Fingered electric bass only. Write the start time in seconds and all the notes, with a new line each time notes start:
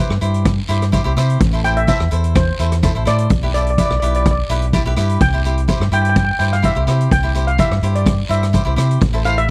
0.10 G2
0.22 G2
0.69 G2
1.05 C2
1.17 C3
1.40 A1
2.00 E2
2.12 E2
2.60 E2
2.95 A1
3.07 A2
3.30 B1
3.90 B1
4.02 B1
4.50 B1
4.85 B1
4.97 G2
5.21 C2
5.80 G2
5.92 G2
6.40 G2
6.76 C2
6.87 C3
7.11 C2
7.71 G2
7.82 G2
8.30 G2
8.66 C2
8.77 C3
9.02 A1